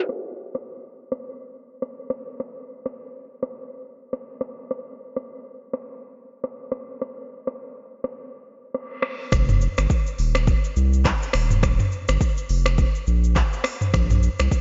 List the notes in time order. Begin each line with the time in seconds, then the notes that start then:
0.09 finger snap, cross-stick
0.55 finger snap, cross-stick
1.12 finger snap, cross-stick
1.82 finger snap, cross-stick
2.10 finger snap, cross-stick
2.40 finger snap, cross-stick
2.86 finger snap, cross-stick
3.43 finger snap, cross-stick
4.13 finger snap, cross-stick
4.41 finger snap, cross-stick
4.71 finger snap, cross-stick
5.16 finger snap, cross-stick
5.73 finger snap, cross-stick
6.44 finger snap, cross-stick
6.72 finger snap, cross-stick
7.02 finger snap, cross-stick
7.47 finger snap, cross-stick
8.04 finger snap, cross-stick
8.74 finger snap, cross-stick
9.02 finger snap, cross-stick
9.32 F1, finger snap, kick, cross-stick, shaker
9.49 mid tom, shaker
9.61 shaker
9.78 G1, finger snap, cross-stick, shaker
9.90 kick, shaker
10.07 shaker
10.19 D#1, open hi-hat, shaker
10.35 finger snap, cross-stick, shaker
10.47 kick, shaker
10.64 shaker
10.76 C2, shaker
10.93 shaker
11.05 finger snap, kick, cross-stick, clap, shaker
11.22 shaker
11.33 D#1, finger snap, cross-stick, open hi-hat, shaker
11.50 mid tom, shaker
11.63 finger snap, kick, cross-stick, shaker
11.80 mid tom, shaker
11.92 shaker
12.08 G1, finger snap, cross-stick, shaker
12.21 kick, shaker
12.37 shaker
12.49 F1, open hi-hat, shaker
12.66 finger snap, cross-stick, shaker
12.78 kick, shaker
12.95 shaker
13.07 A#1, shaker
13.24 shaker
13.36 finger snap, kick, cross-stick, clap, shaker
13.53 shaker
13.64 finger snap, cross-stick, open hi-hat, shaker
13.81 mid tom, shaker
13.94 A#1, finger snap, kick, cross-stick, shaker
14.10 mid tom, shaker
14.23 shaker
14.39 C2, finger snap, cross-stick, shaker
14.51 kick, shaker